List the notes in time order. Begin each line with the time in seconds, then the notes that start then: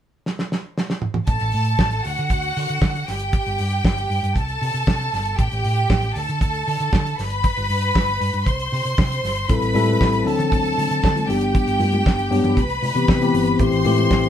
0.26 snare
0.39 snare
0.52 snare
0.78 snare
0.90 snare
1.02 mid tom
1.14 mid tom
1.27 A1 A4 A5, kick, closed hi-hat
1.40 A1, closed hi-hat
1.52 A2, open hi-hat
1.64 closed hi-hat
1.79 A1, kick, snare
1.91 closed hi-hat
2.04 D2 F#4 F#5, open hi-hat
2.17 D3, closed hi-hat
2.30 D2, kick, closed hi-hat
2.42 closed hi-hat
2.57 D3, open hi-hat
2.69 D3, closed hi-hat
2.82 D3, kick, snare
2.96 closed hi-hat
3.07 G1 G4 G5, snare, open hi-hat
3.19 closed hi-hat
3.33 kick, closed hi-hat
3.46 G1, closed hi-hat
3.58 G2, open hi-hat
3.70 closed hi-hat
3.85 G1, kick, snare
3.97 closed hi-hat
4.10 G2, open hi-hat
4.23 G2, closed hi-hat
4.36 C2 A4 A5, kick, closed hi-hat
4.48 closed hi-hat
4.62 C3, open hi-hat
4.74 C3, closed hi-hat
4.87 C3, kick, snare
5.01 closed hi-hat
5.13 G1, snare, open hi-hat
5.25 closed hi-hat
5.39 A1 G4 G5, kick, closed hi-hat
5.52 A1, closed hi-hat
5.64 A2, open hi-hat
5.76 closed hi-hat
5.90 A1, kick, snare
6.02 closed hi-hat
6.15 D2 A4 A5, open hi-hat
6.28 D3, closed hi-hat
6.41 D2, kick, closed hi-hat
6.54 closed hi-hat
6.68 D3, open hi-hat
6.80 D3, closed hi-hat
6.93 D3, kick, snare
7.06 closed hi-hat
7.19 G1 B4 B5, snare, open hi-hat
7.30 closed hi-hat
7.44 kick, closed hi-hat
7.57 G1, closed hi-hat
7.69 G2, open hi-hat
7.81 closed hi-hat
7.95 G1, kick, snare
8.08 closed hi-hat
8.21 G2, open hi-hat
8.33 G2, closed hi-hat
8.46 C2 C5 C6, kick, closed hi-hat
8.59 closed hi-hat
8.72 C3, open hi-hat
8.85 C3, closed hi-hat
8.98 C3, kick, snare
9.12 closed hi-hat
9.23 G1, snare, open hi-hat
9.36 closed hi-hat
9.49 A1 G3 C4 E4 A4 B4 B5, kick, closed hi-hat, muted conga, low conga
9.62 A1, closed hi-hat
9.74 A2 G3 C4 E4 A4, open hi-hat, muted conga, high conga
9.87 closed hi-hat, high conga
10.01 A1, kick, snare
10.14 closed hi-hat
10.25 D2 F#3 C4 D4 A4 A5, open hi-hat
10.39 D3, closed hi-hat, low conga
10.52 D2, kick, closed hi-hat, muted conga, high conga
10.65 closed hi-hat
10.78 D3, open hi-hat, muted conga, high conga
10.91 D3, closed hi-hat
11.04 D3, kick, snare, muted conga
11.16 closed hi-hat, high conga
11.28 G1 G3 B3 D4 G4 G5, open hi-hat, muted conga, low conga
11.41 closed hi-hat
11.54 kick, closed hi-hat, muted conga, low conga
11.67 G1, closed hi-hat
11.79 G2, open hi-hat, muted conga, high conga
11.92 closed hi-hat, high conga
12.06 G1, kick, snare
12.19 closed hi-hat
12.30 G2 F#3 B3 D4 G4, open hi-hat, muted conga
12.44 G2, closed hi-hat, low conga
12.57 C2 B4 B5, kick, closed hi-hat, muted conga, high conga
12.70 closed hi-hat
12.83 C3, open hi-hat, muted conga, high conga
12.95 C3 E3 B3 C4 G4, closed hi-hat
13.08 C3, kick, snare, muted conga
13.21 E3 B3 C4 G4, closed hi-hat, high conga
13.33 G1, open hi-hat, muted conga, low conga
13.45 closed hi-hat
13.59 A1 E3 A3 C4 G4 C5 C6, kick, closed hi-hat, muted conga, low conga
13.72 A1, closed hi-hat
13.85 A2 E3 A3 C4 G4, open hi-hat, muted conga, high conga
13.96 closed hi-hat, high conga
14.11 A1, kick, snare
14.23 closed hi-hat